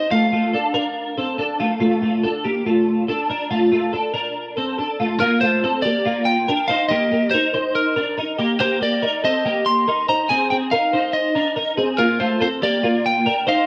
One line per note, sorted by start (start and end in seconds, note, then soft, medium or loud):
0.00 0.11 D#4 medium
0.00 0.10 C5 medium
0.11 0.32 A3 medium
0.11 0.31 F4 loud
0.11 1.56 F5 medium
0.32 0.54 A3 medium
0.32 0.53 F4 medium
0.53 0.74 D4 medium
0.53 0.74 A4 medium
0.74 1.15 D4 medium
0.74 1.14 A#4 loud
1.18 1.39 C4 medium
1.18 1.37 A4 medium
1.38 1.60 D4 medium
1.38 1.59 A4 medium
1.60 1.80 A3 medium
1.60 1.79 F4 medium
1.80 2.02 A3 medium
1.80 2.01 F4 loud
2.02 2.24 A3 medium
2.02 2.23 F4 medium
2.24 2.45 D4 medium
2.24 2.45 A4 medium
2.45 2.66 A#3 medium
2.45 2.66 G4 medium
2.66 3.06 A3 medium
2.66 3.06 F4 medium
3.08 3.29 D4 medium
3.08 3.29 A4 medium
3.30 3.50 D4 medium
3.30 3.51 A#4 medium
3.51 3.72 A3 medium
3.51 3.70 F4 loud
3.72 3.94 A3 medium
3.72 3.93 F4 medium
3.93 4.13 D4 medium
3.93 4.13 A4 medium
4.14 4.54 D4 medium
4.14 4.54 A#4 loud
4.57 4.79 C4 medium
4.57 4.77 A4 medium
4.78 4.99 D4 medium
4.78 4.99 A4 medium
5.00 5.21 A3 medium
5.00 5.20 F4 medium
5.20 5.42 A#3 medium
5.20 5.41 F4 loud
5.20 5.40 A#4 loud
5.41 5.64 A3 medium
5.41 5.63 F4 medium
5.41 5.85 C5 loud
5.64 5.85 C4 medium
5.64 5.85 A4 medium
5.82 6.05 A#3 medium
5.82 6.06 G4 medium
5.82 6.27 D5 loud
6.06 6.46 A#3 medium
6.06 6.45 F4 medium
6.25 6.65 G5 loud
6.48 6.70 D4 medium
6.48 6.69 A#4 medium
6.68 6.91 D#4 medium
6.68 6.90 C5 medium
6.68 6.88 F5 loud
6.89 7.12 A#3 medium
6.89 7.11 G4 loud
6.89 7.33 D#5 loud
7.12 7.33 A#3 medium
7.12 7.33 G4 medium
7.31 7.54 D#4 medium
7.31 7.54 A#4 medium
7.31 7.75 C5 medium
7.54 7.94 D#4 medium
7.54 7.94 C5 loud
7.75 8.15 A#4 medium
7.96 8.18 D4 medium
7.96 8.16 A#4 medium
8.18 8.39 D#4 medium
8.18 8.38 A#4 medium
8.39 8.59 A#3 medium
8.39 8.59 G4 medium
8.60 8.81 A#3 medium
8.60 8.80 G4 loud
8.60 8.80 C5 medium
8.81 9.03 A#3 medium
8.81 9.02 G4 medium
8.81 9.24 D5 loud
9.03 9.24 D#4 medium
9.03 9.23 A#4 medium
9.24 9.45 C4 medium
9.24 9.45 A4 medium
9.24 9.64 D#5 loud
9.45 9.85 A#3 medium
9.45 9.85 G4 medium
9.66 10.05 C6 loud
9.88 10.08 D#4 medium
9.88 10.08 A#4 medium
10.09 10.30 D#4 medium
10.09 10.30 C5 medium
10.09 10.28 A#5 loud
10.29 10.51 C4 medium
10.29 10.50 G#4 loud
10.29 10.50 G#5 loud
10.50 10.73 C4 medium
10.50 10.72 G#4 medium
10.50 10.56 G5 medium
10.71 10.93 D#4 medium
10.71 10.93 A#4 medium
10.71 11.15 F5 medium
10.93 11.34 D#4 medium
10.93 11.33 C5 medium
11.13 11.53 D#5 medium
11.35 11.57 D4 medium
11.35 11.55 A#4 medium
11.56 11.78 D#4 medium
11.56 11.77 A#4 medium
11.77 11.99 C4 medium
11.77 11.99 G#4 medium
11.98 12.20 A#3 medium
11.98 12.19 F4 loud
11.98 12.21 A#4 medium
12.20 12.41 A3 medium
12.20 12.41 F4 medium
12.20 12.40 C5 medium
12.41 12.63 C4 medium
12.41 12.62 A4 medium
12.41 12.48 C5 loud
12.62 12.83 A#3 medium
12.62 12.84 G4 medium
12.62 13.07 D5 loud
12.83 13.24 A#3 medium
12.83 13.23 F4 medium
13.06 13.48 G5 medium
13.26 13.48 D4 medium
13.26 13.46 A#4 medium
13.47 13.66 D#4 medium
13.47 13.66 C5 medium
13.47 13.66 F5 medium